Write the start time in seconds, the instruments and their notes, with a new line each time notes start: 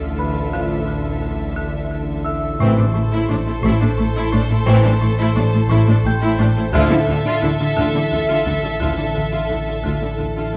Already playing: synth drone A1, double bass section D2, cello section D3, viola section F4, violin section A4 E5
0.18 marimba D3, celesta B4 B5
0.52 marimba D3, french horn section F3 F4
0.88 marimba D3
1.22 marimba D3
1.57 marimba D3
1.91 marimba D3
2.25 marimba D3, celesta E5 E6
2.60 synth drone A1, double bass section A1, timpani A2, cello section A2, marimba A2, french horn section E3 C4, viola section E4, violin section A4 C5
2.78 cello section A2, viola section D4
2.94 double bass section A1, marimba A2, cello section A2, viola section E4
3.12 cello section A2, viola section E4
3.29 double bass section A1, marimba A2, cello section A2, viola section D4
3.47 cello section A2, viola section E4
3.63 double bass section A1, marimba A2, cello section A2, viola section E4
3.81 cello section A2, viola section D4
3.98 double bass section A1, marimba A2, cello section A2, viola section E4
4.15 cello section A2, viola section E4
4.32 double bass section A1, marimba A2, cello section A2, viola section D4
4.50 cello section A2, viola section E4
4.66 double bass section A1, marimba A2, cello section A2, french horn section E3 C4, viola section E4
4.84 cello section A2, viola section D4
5.01 double bass section A1, marimba A2, cello section A2, viola section E4
5.19 cello section A2, viola section E4
5.36 double bass section A1, marimba A2, cello section A2, viola section D4
5.54 cello section A2, viola section E4
5.70 double bass section A1, marimba A2, cello section A2, viola section E4
5.88 cello section A2, viola section D4
6.04 double bass section A1, marimba A2, cello section A2, viola section E4, celesta G5 G6
6.22 cello section A2, viola section E4
6.38 double bass section A1, marimba A2, cello section A2, viola section D4
6.57 cello section A2, viola section E4
6.73 synth drone A1, double bass section D2, marimba D3, cello section D3, french horn section F3 E4, viola section F4, violin section A4 E5
6.91 cello section D3, viola section E4
7.07 double bass section D2, marimba D3, cello section D3, viola section F4
7.25 cello section D3, viola section F4
7.42 double bass section D2, marimba D3, cello section D3, viola section E4
7.59 cello section D3, viola section F4
7.77 double bass section D2, marimba D3, cello section D3, viola section F4
7.94 cello section D3, viola section E4
8.11 double bass section D2, marimba D3, cello section D3, viola section F4
8.28 cello section D3, viola section F4
8.46 double bass section D2, marimba D3, cello section D3, viola section E4
8.63 cello section D3, viola section F4
8.80 double bass section D2, cello section D3, marimba D3, french horn section F3 E4, viola section F4
8.97 cello section D3, viola section E4
9.15 double bass section D2, marimba D3, cello section D3, viola section F4
9.33 cello section D3, viola section F4
9.50 double bass section D2, marimba D3, cello section D3, viola section E4
9.67 cello section D3, viola section F4
9.84 double bass section D2, marimba D3, cello section D3, viola section F4
10.02 cello section D3, viola section E4
10.19 double bass section D2, marimba D3, cello section D3, viola section F4
10.36 cello section D3, viola section F4
10.53 double bass section D2, marimba D3, cello section D3, viola section E4